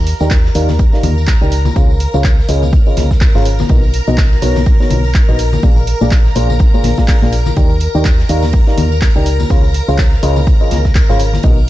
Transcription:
Already playing: D#2 A#4 A#5
0.07 closed hi-hat, open hi-hat
0.20 D#2 D#3 D#4 G4 A#4 D5 G5, tambourine
0.30 kick, snare, clap, closed hi-hat, tambourine
0.45 snare, tambourine
0.55 D#2 D#3 D#4 G4 A#4 D5 F5, closed hi-hat, open hi-hat
0.69 snare, tambourine, high conga
0.79 kick, closed hi-hat, tambourine
0.92 D#3 D#4 G4 A#4 D5 F5, snare, tambourine
1.03 D#2, closed hi-hat, open hi-hat, high conga
1.18 tambourine
1.27 kick, snare, clap, open hi-hat, tambourine
1.42 C#2 D#4 G4 A#4 D5 G5, closed hi-hat, tambourine
1.52 closed hi-hat, open hi-hat
1.65 tambourine, high conga
1.76 C#2 C#3 C#4 F4 G#4 C5 F5, kick, closed hi-hat, tambourine
1.91 tambourine
2.00 closed hi-hat, open hi-hat
2.14 C#2 C#3 C#4 F4 G#4 C5 F5, tambourine
2.24 kick, snare, clap, closed hi-hat, tambourine
2.39 snare, tambourine
2.49 C#2 C#3 C#4 F4 G#4 C5 D#5, closed hi-hat, open hi-hat
2.63 tambourine, high conga
2.73 kick, closed hi-hat, tambourine
2.86 C#3 C#4 F4 G#4 C5 D#5, tambourine
2.97 C#2, snare, closed hi-hat, open hi-hat, high conga
3.11 kick, snare, tambourine
3.21 kick, snare, clap, closed hi-hat, tambourine
3.35 G#1 C#3 C#4 F4 G#4 C5 F5, snare, tambourine
3.45 closed hi-hat, open hi-hat
3.59 snare, tambourine, high conga
3.69 B1 B2 B3 D#4 F#4 A#4 D#5, kick, closed hi-hat, tambourine
3.83 tambourine
3.93 closed hi-hat, open hi-hat
4.07 B1 B2 B3 D#4 F#4 A#4 D#5, tambourine
4.18 kick, snare, clap, closed hi-hat, tambourine
4.31 snare, tambourine
4.42 B1 B2 B3 D#4 F#4 A#4 C#5, closed hi-hat, open hi-hat
4.55 snare, tambourine, high conga
4.66 kick, closed hi-hat, tambourine
4.80 B2 B3 D#4 F#4 A#4 C#5, snare, tambourine
4.90 B1, closed hi-hat, open hi-hat, high conga
5.04 tambourine
5.14 kick, snare, clap, open hi-hat, tambourine
5.29 A#1 B3 D#4 F#4 A#4 D#5, closed hi-hat, tambourine
5.39 closed hi-hat, open hi-hat
5.53 tambourine, high conga
5.63 A#1 A#2 A#3 D4 F4 G#4 D5, kick, closed hi-hat, tambourine
5.77 tambourine
5.87 closed hi-hat, open hi-hat
6.01 A#1 A#2 A#3 D4 F4 G#4 D5, tambourine
6.11 kick, snare, clap, closed hi-hat, tambourine
6.25 snare, tambourine
6.36 A#1 A#2 A#3 D4 F4 G#4 C5, closed hi-hat, open hi-hat
6.50 tambourine, high conga
6.59 kick, closed hi-hat, tambourine
6.74 A#2 A#3 D4 F4 G#4 C5, tambourine
6.84 A#1, snare, closed hi-hat, open hi-hat, high conga
6.98 A#2 A#3 D4 F4 G#4 F5, kick, snare, tambourine
7.08 kick, snare, clap, closed hi-hat, tambourine
7.22 A#1 A#2 A#3 D4 F4 G#4 F5, snare, tambourine
7.33 closed hi-hat, open hi-hat
7.46 snare, tambourine, high conga
7.56 D#2 D#3 D#4 G4 A#4 D5 G5, kick, closed hi-hat, tambourine
7.71 tambourine
7.80 closed hi-hat, open hi-hat
7.95 D#2 D#3 D#4 G4 A#4 D5 G5, tambourine
8.05 kick, snare, clap, closed hi-hat, tambourine
8.19 snare, tambourine
8.29 D#2 D#3 D#4 G4 A#4 D5 F5, closed hi-hat, open hi-hat
8.43 snare, tambourine, high conga
8.53 kick, closed hi-hat, tambourine
8.67 D#3 D#4 G4 A#4 D5 F5, snare, tambourine
8.77 D#2, closed hi-hat, open hi-hat, high conga
8.92 tambourine
9.01 kick, snare, clap, open hi-hat, tambourine
9.15 C#2 D#4 G4 A#4 D5 G5, closed hi-hat, tambourine
9.26 closed hi-hat, open hi-hat
9.40 tambourine, high conga
9.50 C#2 C#3 C#4 F4 G#4 C5 F5, kick, closed hi-hat, tambourine
9.64 tambourine
9.74 closed hi-hat, open hi-hat
9.88 C#2 C#3 C#4 F4 G#4 C5 F5, tambourine
9.98 kick, snare, clap, closed hi-hat, tambourine
10.12 snare, tambourine
10.23 C#2 C#3 C#4 F4 G#4 C5 D#5, closed hi-hat, open hi-hat
10.36 tambourine, high conga
10.47 kick, closed hi-hat, tambourine
10.60 C#3 C#4 F4 G#4 C5 D#5, tambourine
10.71 C#2, snare, closed hi-hat, open hi-hat, high conga
10.85 kick, snare, tambourine
10.95 kick, snare, clap, closed hi-hat, tambourine
11.09 G#1 C#3 C#4 F4 G#4 C5 F5, snare, tambourine
11.19 closed hi-hat, open hi-hat
11.33 snare, tambourine, high conga
11.43 B1 B2 B3 D#4 F#4 A#4 D#5, kick, closed hi-hat, tambourine
11.58 tambourine

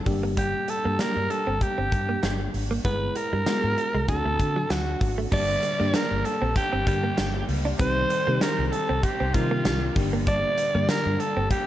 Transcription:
0.06 G1 G3 A#3 D4 G4, muted clean electric guitar stroke, kick, open hi-hat
0.23 A#3
0.37 G3 G4, kick, closed hi-hat
0.68 A4, muted clean electric guitar stroke, closed hi-hat
0.85 G2 A#3
0.99 G3 A#3 D4 G4 A#4, snare, closed hi-hat
1.16 G2
1.30 A4, muted clean electric guitar stroke, closed hi-hat
1.47 G1 C4
1.61 G4, kick, closed hi-hat
1.78 G1 C4
1.92 G2, muted clean electric guitar stroke, kick, closed hi-hat
2.09 A#3
2.23 G1 G3, snare, closed hi-hat
2.40 muted clean electric guitar stroke
2.54 G#1, open hi-hat
2.71 A#3
2.84 G1 G#3 B3 E4 G#4 B4, kick, closed hi-hat
3.15 A#4, muted clean electric guitar stroke, closed hi-hat
3.33 G2 G3
3.46 G#3 B3 E4 F#4, snare, closed hi-hat, tambourine
3.64 G#2
3.78 muted clean electric guitar stroke, closed hi-hat
3.94 C2 G#3
4.08 D2 A3 C4 D4 F#4 A4, kick, closed hi-hat
4.25 D2 A3
4.39 D3, muted clean electric guitar stroke, kick, closed hi-hat
4.56 F#3
4.70 D2 F#3 F#4, snare, closed hi-hat, tambourine
5.01 G#1, muted clean electric guitar stroke, kick, open hi-hat
5.18 A3
5.31 G1 G2 D3 G3 A#3 D4 G4 D5, kick, crash
5.63 muted clean electric guitar stroke, closed hi-hat
5.79 G2 D3 G3 A#3 D4 G4
5.94 D4 A#4, snare, closed hi-hat, tambourine
6.11 G1
6.25 A4, muted clean electric guitar stroke, closed hi-hat
6.42 A#1 C4
6.55 G2 D3 G3 G4, kick, closed hi-hat
6.73 G1 C4
6.86 G2 D3 G3 A#3 D4 G4, muted clean electric guitar stroke, kick, closed hi-hat
7.03 A#3
7.17 G1 G3, snare, closed hi-hat, tambourine
7.34 muted clean electric guitar stroke
7.48 C#2 D3 G3, open hi-hat
7.65 D4
7.78 C2 C3 D#3 G3 C4 D#4 G4 C5, kick, closed hi-hat
8.10 muted clean electric guitar stroke, closed hi-hat
8.27 C3 D#3 G3 A#3 C4 D#4 G4
8.41 D4 A#4, snare, closed hi-hat, tambourine
8.58 C2
8.67 A#4
8.72 A4, muted clean electric guitar stroke, closed hi-hat
8.89 C2 C4
9.03 C3 G3 C4 G4, kick, closed hi-hat
9.20 C2 C4
9.34 C3 D#3 G3 C4 D#4 F4 A#4, muted clean electric guitar stroke, kick, closed hi-hat
9.51 A#3
9.65 C2 G3, snare, closed hi-hat, tambourine
9.95 G1 G2 D3 G3 A#3 D4 G4, muted clean electric guitar stroke, kick, open hi-hat
10.13 A#3
10.27 G3 D5, kick, closed hi-hat
10.58 muted clean electric guitar stroke, closed hi-hat
10.74 G2 D3 G3 A#3 D4 G4
10.89 D4 A#4, snare, closed hi-hat, tambourine
11.06 G2
11.20 A4, muted clean electric guitar stroke, closed hi-hat
11.37 G1 C4
11.50 G2 D3 G3 G4, kick, closed hi-hat

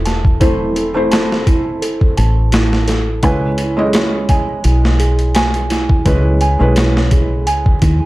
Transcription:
Already playing: E1 A3 C4 E4 E5
0.05 A5, snare, closed hi-hat
0.25 kick
0.40 A3 C4 E4 C5, kick, closed hi-hat
0.76 A4, closed hi-hat
0.94 A3 C4 E4 C5
1.11 A5, snare, closed hi-hat
1.32 snare
1.47 E4, kick, closed hi-hat
1.82 A4, closed hi-hat
2.01 kick
2.17 A1 A5, closed hi-hat
2.52 E4, snare, closed hi-hat
2.73 snare
2.88 A4, snare, closed hi-hat
3.23 C#2 G#3 C#4 E4 B4 G#5, kick, closed hi-hat
3.58 E4, closed hi-hat
3.77 G#3 C#4 E4 D#5
3.93 G#4, snare, closed hi-hat
4.29 G#5, kick, closed hi-hat
4.64 B1 E4, closed hi-hat
4.85 snare
5.00 G#4, closed hi-hat
5.19 closed hi-hat
5.35 G#5, snare, closed hi-hat
5.54 closed hi-hat
5.70 E4, snare, closed hi-hat
5.89 kick
6.05 C#2 G#3 C#4 E4 G#4 B4, kick, closed hi-hat
6.41 G#5, closed hi-hat
6.59 B1 G#3 C#4 E4 B4
6.76 E4, snare, closed hi-hat
6.97 snare
7.11 G#4, kick, closed hi-hat
7.47 C#2 G#5, closed hi-hat
7.66 kick
7.82 D#2 E4, kick, closed hi-hat

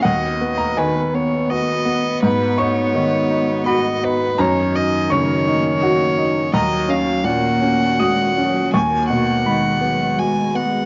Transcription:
Already playing: F#4
0.02 D#2 B3 B4 D#5 F#5
0.41 B3
0.58 A#5
0.77 D#3 B4 G#5
1.14 B3 C#5
1.50 F#4 D#5
1.85 B3
2.23 G#2 F#4 B4 D#5
2.58 D#4 C#5 C#6
2.95 D#3
3.30 D#4
3.66 F#4 D#5 B5
4.03 D#4 B4
4.38 F#2 D#3 A#3 C#5 A#5
4.75 D#4 D#5
5.10 C#3 C#5 C#6
5.48 D#4
5.83 F#4
6.18 D#4
6.54 D#2 F#3 F#4 C#5 D#5 A#5
6.88 C#4 F5
7.24 A#2 A#3 F#5
7.61 C#4
7.99 G#3 F#4 D#6
8.37 F#3 C#4
8.74 D#2 G#3 A#3 G#4 G#5 C#6
9.10 B2 F#5
9.46 D#3 G#3 B5
9.81 F#3 B3
10.18 G#3 F#4 G#5
10.55 B3 F#5

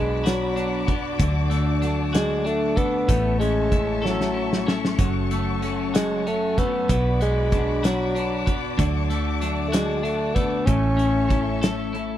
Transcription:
Already playing: B1 B2 F#3 G#3 B3 D4 F#4 D5 B5 D6
0.25 B2 F#3 B3 D4 F#4, snare, closed hi-hat
0.56 F#3 B3 D4 F#4, closed hi-hat
0.88 B3 D4 F#4, kick, closed hi-hat
1.19 D2 D3 F#3 A3 D4 F#4 A5, kick, closed hi-hat
1.51 A3 D4 F#4, closed hi-hat
1.82 F#3 A3 D4 F#4, closed hi-hat
2.14 D3 F#3 G#3 D4 F#4, snare, closed hi-hat
2.45 F#3 A3 D4 F#4, closed hi-hat
2.76 A3 B3 D4 F#4, kick, closed hi-hat
3.07 A1 A2 E3 A3 C#4 E4 A4 C#5 E5 A5 C#6, kick, closed hi-hat
3.40 G#3 C#4 E4, closed hi-hat
3.72 C#4 E4, kick, closed hi-hat
4.03 A2 E3 F#3 A3 C#4 E4 A4, snare
4.21 snare
4.35 A3 C#4 E4 A4
4.53 snare
4.67 A3 C#4 E4 A4, snare
4.85 snare
4.99 F#1 F#2 C#3 F#3 A3 C#4 F#4 C#5 A5, kick, closed hi-hat
5.30 F#3 A3 C#4 F#4, closed hi-hat
5.62 F#3 A3 C#4 F#4, closed hi-hat
5.94 F#2 C#3 F#3 G#3 C#4 F#4, snare, closed hi-hat
6.26 F#3 A3 C#4 F#4, closed hi-hat
6.58 F#3 A3 B3 C#4 F#4, kick, closed hi-hat
6.89 B1 B2 F#3 B3 D4 F#4 D5 B5 D6, kick, closed hi-hat
7.20 G#3 B3 D4 F#4, closed hi-hat
7.52 F#3 B3 D4 F#4, kick, closed hi-hat
7.84 B2 F#3 B3 D4 F#4, snare, closed hi-hat
8.15 F#3 B3 D4 F#4, closed hi-hat
8.47 B3 D4 F#4, kick, closed hi-hat
8.79 D2 D3 F#3 A3 D4 F#4 A5, kick, closed hi-hat
9.10 A3 D4 F#4, closed hi-hat
9.41 F#3 A3 D4 F#4, closed hi-hat
9.68 A3
9.73 D3 F#3 G#3 D4 F#4, snare, closed hi-hat
10.03 F#3 A3 D4, closed hi-hat
10.07 F#4
10.35 A3 B3 D4 F#4, kick, closed hi-hat
10.66 A1 A2 E3 A3 C#4 E4 A4 C#5 E5 C#6, kick, closed hi-hat
10.98 A3 C#4 E4 A4, closed hi-hat
11.30 A3 C#4 E4 A4, kick, closed hi-hat
11.62 A2 E3 A3 C#4 E4 A4, snare, closed hi-hat
11.94 A3 C#4 E4 A4, closed hi-hat

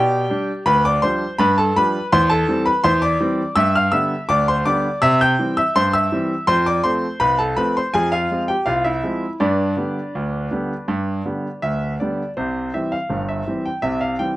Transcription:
Already playing: B2 G4 D5 G5
0.30 G3 D4
0.66 D2 B4 B5
0.85 D5 D6
1.02 F3 G3 D4 C5 C6
1.38 G2 B4 B5
1.58 A4 A5
1.76 F3 G3 D4 B4 B5
2.12 E2 C5 C6
2.30 A4 A5
2.48 E3 G3 C4
2.66 B4 B5
2.84 E2 C5 C6
3.02 D5 D6
3.21 E3 G3 C4
3.56 G2 E5 E6
3.75 F5 F6
3.92 D3 G3 B3 E5 E6
4.29 D2 D5 D6
4.48 C5 C6
4.66 D3 G3 B3 D5 D6
5.02 C3 E5 E6
5.21 G5 G6
5.39 E3 G3 C4
5.57 E5 E6
5.76 G2 C5 C6
5.93 E5 E6
6.12 E3 G3 C4
6.47 F2 C5 C6
6.66 D5 D6
6.84 F3 A3 C4 C5 C6
7.20 C2 B4 B5
7.39 A4 A5
7.57 F3 A3 C4 B4 B5
7.77 C5 C6
7.94 F2 G#4 G#5
8.12 F4 F5
8.31 F3 G#3 C4
8.48 G4 G5
8.66 C2 F4 F5
8.84 E4 E5
9.03 F3 G#3 C4
9.40 G2 D4 B4 D5
9.77 D3 G3 B3
10.15 D2
10.51 D3 G3 B3
10.88 G2
11.25 D3 G3 B3
11.62 D2 E5
12.00 D3 G3 B3 D5
12.37 C2 C3 C5
12.74 E3 G3 C4 E5
12.92 F5
13.10 G1 G2
13.29 E5
13.48 E3 G3 C4
13.66 G5
13.82 C2 C3 E5
14.01 F5
14.19 E3 G3 C4 G5

